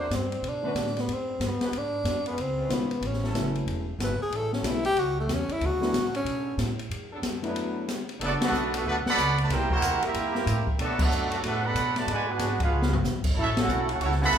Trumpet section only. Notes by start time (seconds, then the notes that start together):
8.23 B3 F#4 A4 D5
8.44 D4 A4 B4 F#5
8.76 D4 A4 B4 F#5
8.88 D4 A4 B4 F#5
9.08 A4 D5 F#5 B5
9.41 F#4 B4 D5 A5
9.52 E4 A#4 C5 G5
9.72 E4 A#4 C5 F#5
10.05 C4 G4 A#4 E5
10.78 B3 F#4 A4 C#5 D5
11.00 D4 A4 B4 F#5
11.33 D4 A4 B4 F#5
11.45 D4 A4 B4 F#5
11.66 A4 D5 F#5 B5
11.98 F#4 B4 D5 A5
12.11 F#4 B4 D5 G#5
12.30 D4 G#4 B4 F#5
12.62 C#4 G#4 B4 F5
13.40 C#4 F#4 A4 E5
13.60 E4 A4 C#5 F#5
13.92 E4 A4 C#5 F#5
14.03 E4 A4 C#5 F#5
14.23 A4 E5 F#5 B5